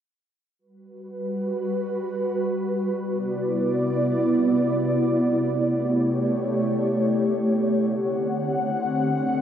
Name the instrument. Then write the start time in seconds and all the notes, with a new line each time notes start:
ambient pad
0.59 G3 F#4 B4
2.98 C3 B3 E4 D5
5.39 A3 G4 C#5
7.79 D3 C4 F#5